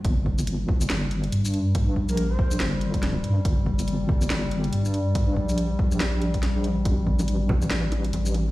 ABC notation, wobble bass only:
X:1
M:4/4
L:1/8
Q:"Swing 16ths" 1/4=141
K:Gm
V:1 name="Wobble bass" clef=bass
G,,,4 G,,,2 G,,2- | G,, B,,,3 G,,,3 G,, | G,,,4 G,,,2 G,,2- | G,, B,,,3 B,,,4 |
A,,,4 A,,,2 A,,,2 |]